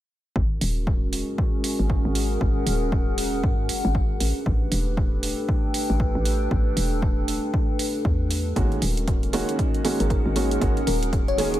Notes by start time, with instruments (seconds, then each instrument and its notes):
0.36 fm bass G#1, analog synth pad G#3 C#4 F#4 A#4, ambient pad C#4, kick
0.41 ambient pad G#4
0.61 fm bass D#1, open hi-hat
0.84 ambient pad A#4, kick
1.12 ambient pad F#5, open hi-hat
1.38 kick
1.64 open hi-hat
1.79 fm bass G#1
1.90 kick
2.05 fm bass G#1
2.15 open hi-hat
2.41 fm bass G#1, kick
2.67 fm bass D#1, open hi-hat
2.92 kick
3.18 open hi-hat
3.43 fm bass G#2, kick
3.69 fm bass F#1, open hi-hat
3.85 fm bass G#1
3.95 kick
4.20 fm bass A1, analog synth pad A3 D4 G4 B4, ambient pad D4, open hi-hat
4.26 ambient pad A4
4.46 fm bass A1, kick
4.61 ambient pad B4
4.68 fm bass E1, ambient pad G5, open hi-hat
4.97 kick
5.23 open hi-hat
5.49 kick
5.74 open hi-hat
5.90 fm bass A1
6.00 kick
6.15 fm bass A1
6.25 open hi-hat
6.51 fm bass A1, kick
6.77 fm bass E1, open hi-hat
7.02 kick
7.28 open hi-hat
7.54 kick
7.79 open hi-hat
8.05 fm bass E2, kick
8.31 open hi-hat
8.56 fm bass G#1, felt piano D#3 G#3 A#3 C#4 F#4, analog synth pad G#3 C#4 F#4 A#4, ambient pad C#4, kick, closed hi-hat
8.72 closed hi-hat
8.79 fm bass D#1, ambient pad G#4, open hi-hat
8.93 ambient pad A#4
8.97 ambient pad F#5, closed hi-hat
9.08 kick, closed hi-hat
9.23 closed hi-hat
9.33 felt piano D#3 G#3 A#3 C#4 F#4, open hi-hat
9.49 closed hi-hat
9.59 kick, closed hi-hat
9.74 closed hi-hat
9.84 felt piano D#3 G#3 A#3 C#4 F#4, open hi-hat
10.00 fm bass G#1, fm electric piano A#4, closed hi-hat
10.10 fm electric piano A#4, kick, closed hi-hat
10.26 fm bass G#1
10.35 felt piano D#3 G#3 A#3 C#4 F#4, open hi-hat
10.51 closed hi-hat
10.61 fm bass G#1, felt piano D#3 G#3 A#3 C#4 F#4, analog synth pad G#4, kick, closed hi-hat
10.77 closed hi-hat
10.87 fm bass D#1, fm electric piano A#4, open hi-hat
11.03 closed hi-hat
11.13 kick, closed hi-hat
11.28 fm electric piano C#5, closed hi-hat
11.37 felt piano D#3 G#3 A#3 C#4 G#4, open hi-hat
11.54 closed hi-hat